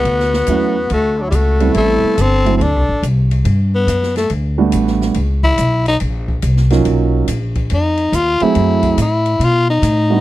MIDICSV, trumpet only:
0, 0, Header, 1, 2, 480
1, 0, Start_track
1, 0, Tempo, 424628
1, 62, Time_signature, 4, 2, 24, 8
1, 11537, End_track
2, 0, Start_track
2, 0, Title_t, "Trumpet"
2, 0, Program_c, 0, 56
2, 0, Note_on_c, 0, 66, 74
2, 987, Note_off_c, 0, 66, 0
2, 1032, Note_on_c, 0, 66, 67
2, 1335, Note_on_c, 0, 62, 65
2, 1352, Note_off_c, 0, 66, 0
2, 1420, Note_off_c, 0, 62, 0
2, 1427, Note_on_c, 0, 64, 51
2, 1498, Note_on_c, 0, 66, 71
2, 1515, Note_off_c, 0, 64, 0
2, 1953, Note_off_c, 0, 66, 0
2, 1960, Note_on_c, 0, 64, 75
2, 2448, Note_on_c, 0, 69, 74
2, 2465, Note_off_c, 0, 64, 0
2, 2885, Note_off_c, 0, 69, 0
2, 2894, Note_on_c, 0, 69, 55
2, 2930, Note_off_c, 0, 69, 0
2, 2930, Note_on_c, 0, 69, 75
2, 3421, Note_off_c, 0, 69, 0
2, 11537, End_track
0, 0, End_of_file